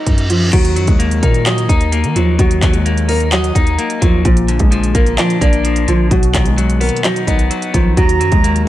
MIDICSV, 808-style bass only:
0, 0, Header, 1, 2, 480
1, 0, Start_track
1, 0, Key_signature, -6, "minor"
1, 0, Tempo, 465116
1, 546, Time_signature, 4, 2, 24, 8
1, 8959, End_track
2, 0, Start_track
2, 0, Title_t, "808-style bass"
2, 0, Program_c, 0, 38
2, 67, Note_on_c, 0, 42, 108
2, 528, Note_off_c, 0, 42, 0
2, 547, Note_on_c, 0, 39, 111
2, 787, Note_on_c, 0, 42, 103
2, 802, Note_off_c, 0, 39, 0
2, 900, Note_off_c, 0, 42, 0
2, 906, Note_on_c, 0, 39, 104
2, 1252, Note_off_c, 0, 39, 0
2, 1266, Note_on_c, 0, 46, 105
2, 1727, Note_off_c, 0, 46, 0
2, 1746, Note_on_c, 0, 39, 108
2, 2105, Note_on_c, 0, 51, 99
2, 2121, Note_off_c, 0, 39, 0
2, 2220, Note_off_c, 0, 51, 0
2, 2226, Note_on_c, 0, 39, 107
2, 2456, Note_off_c, 0, 39, 0
2, 2466, Note_on_c, 0, 39, 109
2, 2696, Note_off_c, 0, 39, 0
2, 2706, Note_on_c, 0, 39, 104
2, 3628, Note_off_c, 0, 39, 0
2, 3666, Note_on_c, 0, 39, 108
2, 3897, Note_off_c, 0, 39, 0
2, 4148, Note_on_c, 0, 39, 108
2, 4377, Note_off_c, 0, 39, 0
2, 4387, Note_on_c, 0, 34, 113
2, 4732, Note_off_c, 0, 34, 0
2, 4746, Note_on_c, 0, 34, 107
2, 5092, Note_off_c, 0, 34, 0
2, 5106, Note_on_c, 0, 34, 106
2, 5337, Note_off_c, 0, 34, 0
2, 5586, Note_on_c, 0, 34, 106
2, 6047, Note_off_c, 0, 34, 0
2, 6066, Note_on_c, 0, 34, 108
2, 6297, Note_off_c, 0, 34, 0
2, 6306, Note_on_c, 0, 35, 112
2, 6537, Note_off_c, 0, 35, 0
2, 6546, Note_on_c, 0, 35, 106
2, 7122, Note_off_c, 0, 35, 0
2, 7507, Note_on_c, 0, 35, 106
2, 7737, Note_off_c, 0, 35, 0
2, 7988, Note_on_c, 0, 35, 110
2, 8218, Note_off_c, 0, 35, 0
2, 8227, Note_on_c, 0, 39, 108
2, 8467, Note_on_c, 0, 42, 101
2, 8483, Note_off_c, 0, 39, 0
2, 8581, Note_off_c, 0, 42, 0
2, 8587, Note_on_c, 0, 39, 103
2, 8932, Note_off_c, 0, 39, 0
2, 8959, End_track
0, 0, End_of_file